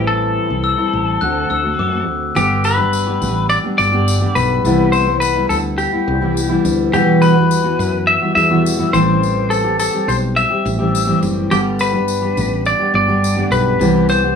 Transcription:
Already playing: A1 A2 E3 G3 C4 E4
0.07 A4
0.49 C2 G3 C4 E4
0.64 E6
0.78 G3 C4 E4
0.93 A1
1.20 D2 D3 A3 C4 F#4 F#6
1.50 D2 E6
1.63 A3 C4 F#4
1.79 F#2 D6
1.92 A3 C4 F#4
2.08 D2
2.35 G1 G2 D3 G3 B3 D4 G4, tambourine
2.64 B4, tambourine
2.78 G3 B3 D4 G4
2.93 tambourine
3.07 G3 B3 D4 G4
3.21 A1, tambourine
3.49 D5, tambourine
3.64 G3 B3 D4 G4
3.78 G1 D5, tambourine
3.93 G2 D3 G3 B3 D4 G4
4.08 tambourine
4.21 G2 D3 G3 B3 D4 G4
4.35 B1 B4, tambourine
4.64 C2 C3 E3 G3 B3 E4, tambourine
4.92 C5, tambourine
5.07 G3 B3 E4
5.20 B4, tambourine
5.35 G3 B3 E4
5.49 D2 A4, tambourine
5.78 G4, tambourine
5.93 G3 B3 E4
6.08 C2
6.21 C3 E3 G3 B3 E4
6.37 tambourine
6.49 C3 E3 G3 B3 E4
6.65 D2, tambourine
6.92 E2 B2 E3 G3 B3 F#4 G4, tambourine
7.22 B4, tambourine
7.36 E3 G3 B3 F#4
7.51 tambourine
7.64 E3 B3 F#4
7.79 F#2, tambourine
8.07 E5
8.21 E3 G3 B3 F#4
8.35 E2 E5, tambourine
8.50 E2 B2 E3 G3 B3 F#4
8.66 tambourine
8.79 E2 B2 E3 G3 B3 F#4
8.93 A1 A2 E3 G3 C4 G4 C5, tambourine
9.23 tambourine
9.50 A4, tambourine
9.64 G3 C4 G4
9.79 A4, tambourine
9.92 G3 C4 G4
10.08 B1 C5, tambourine
10.36 E5, tambourine
10.50 G3 C4 G4
10.65 A1, tambourine
10.79 A2 E3 G3 C4 G4
10.95 tambourine
11.07 A2 E3 G3 C4 G4
11.22 F#1, tambourine
11.51 G1 G2 D3 G3 B3 D4 G4, tambourine
11.79 B4, tambourine
11.93 G3 B3 D4 G4
12.08 tambourine
12.22 G3 B3 D4 G4
12.37 A1, tambourine
12.65 D5, tambourine
12.79 G3 B3 D4 G4
12.94 G1 D5
13.08 G2 D3 G3 B3 D4 G4
13.24 tambourine
13.37 G2 D3 G3 B3 D4 G4
13.51 B1 B4, tambourine
13.79 C2 C3 E3 G3 B3 G4, tambourine
14.09 C5, tambourine
14.23 G3 B3 G4

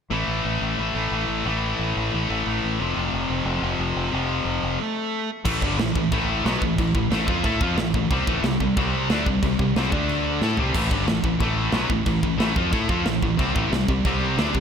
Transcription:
0.11 A1 A2 E3 A3
0.28 A1
0.45 A1
0.62 A1
0.78 A1 A2 E3 A3
0.95 A1 A2 E3 A3
1.12 A1 A2 E3 A3
1.28 A1
1.45 A1 A2 E3 A3
1.79 A1
1.97 A1
2.12 A1 A2 E3 A3
2.30 A1 A2 E3 A3
2.46 A1 A2 E3 A3
2.64 A1
2.79 F1 F2 C3 F3
2.97 F1
3.13 F1
3.30 F1
3.45 F1 F2 C3 F3
3.62 F1 F2 C3 F3
3.79 F1 F2 C3 F3
3.96 F1
4.13 F1 F2 C3 F3
4.45 F1
4.63 F1
5.45 A1 A2 E3 A3, kick, crash, china
5.62 G1 G2 D3 G3, kick
5.79 A1 A2 E3, snare, china
5.96 A1 A2 E3, kick
6.12 A1 A2 E3 A3, kick, china
6.46 B1 B2 F#3 B3, snare, china
6.61 A1 A2 E3, kick
6.78 A1 A2 E3, kick, china
6.94 A1 A2 E3, kick
7.11 A1 A2 E3 A3, snare, china
7.28 F2 F3 C4 F4, kick
7.43 A2 A3 E4 A4, kick, china
7.61 F2 F3 C4 F4, kick
7.77 A1 A2 E3, snare, china
7.94 A1 A2 E3, kick
8.11 C2 C3 G3 C4, kick, china
8.27 A1 A2 E3 A3, kick
8.43 C2 C3 G3, snare, china
8.60 C2 C3 G3, kick
8.77 C2 C3 G3 C4, kick, china
9.10 D2 D3 A3 D4, snare, china
9.26 C2 C3 G3, kick
9.42 C2 C3 G3, kick, china
9.59 C2 C3 G3, kick
9.76 C2 C3 G3 C4, snare, china
9.92 D2 D3 A3 D4, kick
10.09 china
10.41 A2 A3 E4 A4, snare
10.57 C2 C3 G3 C4, floor tom
10.75 A1 A2 E3 A3, kick, china, splash, crash
10.91 G1 G2 D3 G3, kick
11.08 A1 A2 E3, snare, china
11.23 A1 A2 E3, kick
11.40 A1 A2 E3 A3, kick, china
11.72 B1 B2 F#3 B3, snare, china
11.89 A1 A2 E3, kick
12.06 A1 A2 E3, kick, china
12.23 A1 A2 E3, kick
12.40 A1 A2 E3 A3, snare, china
12.56 F2 F3 C4 F4, kick
12.73 A2 A3 E4 A4, kick, china
12.89 F2 F3 C4 F4, kick
13.06 A1 A2 E3, snare, china
13.22 A1 A2 E3, kick
13.39 C2 C3 G3 C4, kick, china
13.56 A1 A2 E3 A3, kick
13.72 C2 C3 G3, snare, china
13.88 C2 C3 G3, kick
14.05 C2 C3 G3 C4, kick, china
14.38 D2 D3 A3 D4, snare, china
14.54 C2 C3 G3, kick

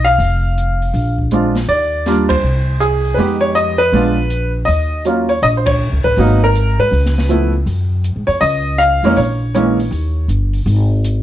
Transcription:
Already playing: B1
0.05 F5, open hi-hat
0.18 F1, open hi-hat
0.58 closed hi-hat
0.82 open hi-hat
0.94 A#1, open hi-hat
1.18 kick
1.31 G#3 C4 D4 F4, closed hi-hat
1.55 snare, open hi-hat
1.68 D#2 D5, open hi-hat
2.06 G3 A#3 D4 F4, snare, closed hi-hat
2.29 C5, kick, ride
2.43 C2
2.80 G#4, closed hi-hat
3.05 open hi-hat
3.14 F2 G#3 B3 B4
3.19 D#4 G4, open hi-hat
3.41 C#5
3.55 D#5, closed hi-hat
3.78 B4, open hi-hat
3.92 A#1 G#3 B3 D4 F4, open hi-hat
4.30 closed hi-hat
4.65 D#2 D#5, open hi-hat
5.05 F#3 A#3 C#4 F4, closed hi-hat
5.29 C#5, open hi-hat
5.42 A#1 D#5, open hi-hat
5.57 C5
5.66 C#5, kick, ride
5.92 C#2
6.03 A1 B4, kick, open hi-hat
6.17 G#1 F#3 A#3 B3 D#4, open hi-hat
6.44 A#4
6.55 closed hi-hat
6.78 G#2 B4, open hi-hat
6.91 C#2, open hi-hat
7.06 snare
7.18 snare
7.29 F3 A3 B3 E4, closed hi-hat
7.66 F#2, open hi-hat
8.04 closed hi-hat
8.16 G#2
8.27 F2 C#5, open hi-hat
8.41 C#2 D#5, open hi-hat
8.78 F5, closed hi-hat
9.03 F2 E3 G#3 A#3 C#4, open hi-hat
9.16 A#1 C#5, open hi-hat
9.55 E3 G#3 A#3 C#4 C#5, closed hi-hat
9.80 open hi-hat
9.91 D#2, open hi-hat
10.28 G1, closed hi-hat
10.53 open hi-hat
10.66 G#1, open hi-hat
11.04 closed hi-hat

